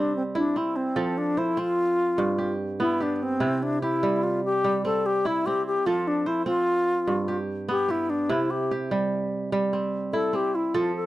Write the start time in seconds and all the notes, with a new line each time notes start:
Already playing: C3 G3 C4 D4 G4
0.17 C4
0.35 D4 E4
0.56 C4 E4
0.76 C4
0.96 F3 A4
1.18 D4
1.37 E4 C5
1.57 C4 F4
2.18 G2
2.38 G4
2.80 B3 E4
3.00 D4 G4
3.16 D4
3.23 C4
3.40 C3 E4
3.63 D4
3.82 E4 G4
4.03 G3
4.23 F4
4.45 G4
4.64 G3
4.85 C4 A4
5.06 G4
5.25 E4
5.46 C4 G4
5.67 G4
5.86 F3 F4 A4
6.08 D4
6.26 E4 C5
6.46 C4 F4
7.07 G2
7.28 G4
7.68 B3 G4
7.88 E4 G4
8.10 D4
8.29 C3 E4
8.51 G4
8.71 G4
8.91 G3
9.52 G3
9.73 C4
10.13 E4 A4
10.33 C4 G4
10.55 E4
10.74 F3 F4 A4
10.96 A4